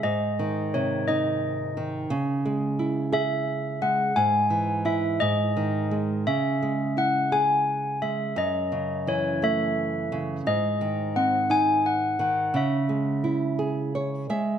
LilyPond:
<<
  \new Staff \with { instrumentName = "Handbells" } { \time 6/8 \key cis \minor \tempo 4. = 57 dis''4 cis''8 dis''4 r8 | r4. e''4 fis''8 | gis''4 e''8 dis''4 r8 | e''4 fis''8 gis''4 e''8 |
dis''4 cis''8 e''4 r8 | dis''4 fis''8 gis''8 fis''8 fis''8 | e''2 r4 | }
  \new Staff \with { instrumentName = "Nylon-string guitar" } { \clef bass \time 6/8 \key cis \minor << { r2. | r2. | r2. | r2. |
r2. | r2. | r2 cis''8 e''8 | } \\ { gis,8 dis8 bis,8 dis'4 dis8 | cis8 gis8 e'8 gis'4 gis8 | gis,8 e8 e'8 gis,8 dis8 gis8 | cis8 gis8 e'8 gis'4 gis8 |
fis,8 cis8 e8 a4 cis8 | gis,8 dis8 bis8 dis'4 dis8 | cis8 gis8 e'8 gis'4 gis8 | } >> }
>>